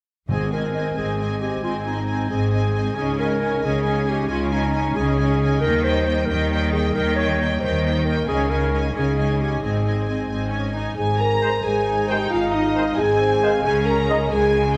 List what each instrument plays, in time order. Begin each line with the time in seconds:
0.29 double bass section G#1, timpani G#2, cello section G#2, french horn section G#3 C4, viola section C4, clarinet G#4, violin section D#5 G#5
0.50 viola section C4, clarinet A#4, violin section D#5 G#5
0.74 viola section C4, violin section D#5 G#5
0.96 double bass section G#1, cello section G#2, viola section C4, clarinet G#4, violin section D#5 G#5
1.18 viola section C4, violin section D#5 G#5
1.41 viola section C4, clarinet G4, violin section D#5 G#5
1.62 double bass section G#1, cello section G#2, viola section C4, clarinet F4, violin section D#5 G#5
1.84 viola section C4, clarinet D#4, violin section D#5 G#5
2.06 viola section C4, violin section D#5 G#5
2.29 double bass section G#1, cello section G#2, viola section C4, clarinet G#4, violin section D#5 G#5
2.51 viola section C4, violin section D#5 G#5
2.74 viola section C4, violin section D#5 G#5
2.95 double bass section C#2, cello section C#3, french horn section G#3 D#4, viola section C#4, clarinet G#4, violin section D#5 G#5
3.18 viola section C#4, clarinet A#4, violin section D#5 G#5
3.40 viola section C#4, violin section D#5 G#5
3.61 double bass section C#2, cello section C#3, violin section D#5 G#5
3.66 viola section C#4, clarinet G#4
3.83 viola section C#4, violin section D#5 G#5
4.05 clarinet G4, violin section D#5 G#5
4.10 viola section C#4
4.27 double bass section C#2, cello section C#3, viola section C#4, clarinet F4, violin section D#5 G#5
4.50 clarinet D#4, violin section D#5 G#5
4.54 viola section C#4
4.72 viola section C#4, violin section D#5 G#5
4.94 double bass section C#2, cello section C#3, clarinet G#4, violin section D#5 G#5
4.98 viola section C#4
5.19 viola section C#4, violin section D#5 G#5
5.41 viola section C#4, violin section D#5 G#5
5.61 double bass section D#2, cello section D#3, french horn section G3 D#4, clarinet A#4, violin section G5
5.65 viola section A#3, violin section D#5
5.84 viola section A#3, clarinet C5, violin section G5
5.88 violin section D#5
6.06 viola section A#3, violin section G5
6.10 violin section D#5
6.26 double bass section D#2, cello section D#3, viola section A#3, clarinet A#4, violin section G5
6.31 violin section D#5
6.51 viola section A#3, violin section D#5 G5
6.72 viola section A#3, clarinet G#4, violin section G5
6.76 violin section D#5
6.94 double bass section D#2, cello section D#3, viola section A#3, clarinet A#4, violin section G5
6.99 violin section D#5
7.16 viola section A#3, clarinet C#5, violin section G5
7.21 violin section D#5
7.40 viola section A#3, violin section D#5 G5
7.60 double bass section D#2, cello section D#3, viola section A#3, clarinet C5, violin section G5
7.65 violin section D#5
7.85 viola section A#3, violin section D#5 G5
8.05 viola section A#3, clarinet A#4, violin section D#5 G5
8.27 double bass section C#2, cello section C#3, french horn section G#3 D#4, viola section C#4, clarinet G#4, violin section D#5 G#5
8.50 viola section C#4, clarinet A#4, violin section D#5 G#5
8.72 viola section C#4, violin section D#5 G#5
8.93 double bass section C#2, cello section C#3, viola section C#4, clarinet G#4, violin section D#5 G#5
9.16 viola section C#4, violin section D#5 G#5
9.39 viola section C#4, clarinet G4, violin section D#5 G#5
9.61 double bass section G#1, cello section G#2, french horn section C4, viola section C4, clarinet G#4, violin section D#5 G#5
9.84 viola section C4, violin section D#5 G#5
10.06 viola section C4, violin section D#5 G#5
10.29 double bass section G#1, cello section G#2, viola section C4, violin section D#5 G#5
10.50 viola section C#4, violin section G#5
10.54 violin section D#5
10.74 viola section D#4, violin section D#5 G#5
10.96 double bass section G#1, cello section G#2, french horn section G#4, clarinet C5, violin section G#5, flute G#5
11.19 french horn section A#4, violin section A#5
11.41 trombone section D#3 G#3, trumpet section C5
11.63 double bass section G#1, cello section G#2, viola section D#4, french horn section G#4, violin section G#5, flute G#5
12.08 trombone section D#3 G#3, french horn section G4, trumpet section C5, violin section G5
12.30 double bass section G#1, cello section G#2, french horn section F4, clarinet F5, violin section F5, flute A#5
12.52 french horn section D#4, violin section D#5
12.73 trombone section D#3 G#3, trumpet section C5
12.96 double bass section G#1, cello section G#2, viola section C4, french horn section G#4, violin section G#5, flute G#5
13.00 clarinet D#5
13.22 clarinet C5
13.41 trombone section D#3 G#3, trumpet section C5, clarinet F5
13.64 double bass section C#2, cello section C#3, viola section C#4, french horn section G#4, clarinet D#5, flute G#5, violin section G#5
13.86 french horn section A#4, violin section A#5
14.08 trombone section D#3 G#3, trumpet section D#5
14.30 double bass section C#2, cello section C#3, viola section G#3, french horn section G#4, violin section G#5